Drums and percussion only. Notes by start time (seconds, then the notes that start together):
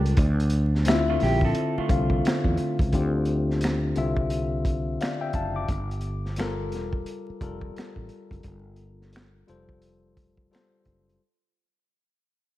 0.06 closed hi-hat
0.17 kick, closed hi-hat
0.40 closed hi-hat
0.50 closed hi-hat
0.75 snare
0.85 finger snap, closed hi-hat
0.89 snare
1.20 snare, open hi-hat
1.41 kick
1.55 closed hi-hat
1.89 kick, closed hi-hat
2.10 kick
2.25 finger snap, snare, closed hi-hat
2.44 kick
2.57 closed hi-hat
2.79 kick, closed hi-hat
2.92 kick, closed hi-hat
3.25 closed hi-hat
3.51 snare
3.61 finger snap, closed hi-hat
3.65 snare
3.96 closed hi-hat
4.17 kick
4.30 closed hi-hat
4.65 kick, closed hi-hat
5.01 finger snap, snare, closed hi-hat
5.33 kick, closed hi-hat
5.69 kick, closed hi-hat
5.91 closed hi-hat
6.01 closed hi-hat
6.26 snare
6.36 finger snap, closed hi-hat
6.40 snare
6.72 snare, closed hi-hat
6.93 kick
7.06 closed hi-hat
7.41 kick, closed hi-hat
7.61 kick
7.77 finger snap, snare, closed hi-hat
7.96 kick
8.09 closed hi-hat
8.31 kick, closed hi-hat
8.43 kick, closed hi-hat
8.76 closed hi-hat
9.02 snare
9.13 finger snap, closed hi-hat
9.17 snare
9.48 closed hi-hat
9.69 kick
9.82 closed hi-hat
10.17 kick, closed hi-hat
10.37 kick
10.53 finger snap, snare, closed hi-hat
10.85 kick, closed hi-hat
11.10 closed hi-hat